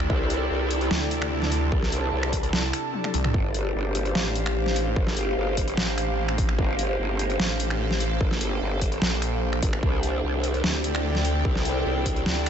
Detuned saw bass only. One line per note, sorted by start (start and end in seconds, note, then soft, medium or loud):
0.91 1.70 D2 loud
2.53 2.72 C2 loud
3.14 3.33 C2 loud
4.15 4.95 A1 loud
5.77 6.57 A1 loud
7.40 8.19 A1 loud
9.02 9.61 A#1 loud
10.64 11.43 D2 loud
12.26 12.49 D2 loud